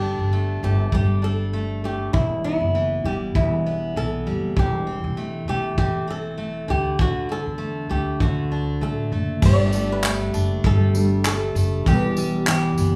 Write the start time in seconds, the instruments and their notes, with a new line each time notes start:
Already playing: upright bass G1, steel-string acoustic guitar G3 A3, nylon-string guitar G4
0.02 steel-string acoustic guitar D4
0.19 upright bass G1
0.33 steel-string acoustic guitar A3
0.63 upright bass G1, steel-string acoustic guitar A3, nylon-string guitar G4
0.92 upright bass G1, steel-string acoustic guitar G3, nylon-string guitar G4, kick
1.22 steel-string acoustic guitar D4, nylon-string guitar A4
1.53 steel-string acoustic guitar A3
1.84 steel-string acoustic guitar A3, nylon-string guitar G4
2.13 upright bass E1, steel-string acoustic guitar E2, nylon-string guitar E4, kick
2.44 steel-string acoustic guitar B3, nylon-string guitar E4
2.61 upright bass F#1
2.75 steel-string acoustic guitar E3
3.04 upright bass E1, steel-string acoustic guitar G3, nylon-string guitar G4
3.35 upright bass E1, steel-string acoustic guitar E2, nylon-string guitar E4, kick
3.66 steel-string acoustic guitar B3
3.96 upright bass B1, steel-string acoustic guitar E3, nylon-string guitar A4
4.26 upright bass F#1, steel-string acoustic guitar G3
4.56 upright bass E1, steel-string acoustic guitar E3, nylon-string guitar G4, kick
4.87 steel-string acoustic guitar C4
5.04 upright bass E1
5.17 steel-string acoustic guitar A3
5.48 upright bass E1, steel-string acoustic guitar A3, nylon-string guitar G4
5.78 upright bass E1, steel-string acoustic guitar E3, nylon-string guitar G4, kick
6.08 steel-string acoustic guitar C4, nylon-string guitar A4
6.38 steel-string acoustic guitar A3
6.68 upright bass D2, steel-string acoustic guitar D3, nylon-string guitar G4
6.99 steel-string acoustic guitar D3, nylon-string guitar F#4, kick
7.29 steel-string acoustic guitar D4, nylon-string guitar A4
7.46 upright bass E2
7.58 steel-string acoustic guitar A3
7.89 upright bass D2, steel-string acoustic guitar A3, nylon-string guitar G4
8.20 upright bass D2, steel-string acoustic guitar D3, nylon-string guitar F#4, kick
8.52 steel-string acoustic guitar D4
8.81 upright bass A2, steel-string acoustic guitar A3, nylon-string guitar A4
9.12 upright bass F#1, steel-string acoustic guitar A3
9.42 upright bass G1, felt piano G3 A3 D4 A4, steel-string acoustic guitar G3 G4, nylon-string guitar D5, kick, crash, tambourine
9.72 steel-string acoustic guitar A3, tambourine
9.92 nylon-string guitar B4
10.04 steel-string acoustic guitar A3, clap, tambourine
10.34 upright bass F#1, steel-string acoustic guitar D4, tambourine
10.64 upright bass G1, steel-string acoustic guitar G3, nylon-string guitar A4, kick
10.94 felt piano G3 A3 D4 A4, tambourine
11.25 steel-string acoustic guitar A3, nylon-string guitar A4, clap, tambourine
11.55 upright bass F#1, steel-string acoustic guitar A3, tambourine
11.85 upright bass E1, steel-string acoustic guitar E2 G4, felt piano G3 B3 E4 A4, nylon-string guitar G4, kick, tambourine
11.94 felt piano B4
12.17 steel-string acoustic guitar G3, tambourine
12.47 steel-string acoustic guitar E3, nylon-string guitar G4, clap, tambourine
12.77 upright bass F#1, steel-string acoustic guitar B3, tambourine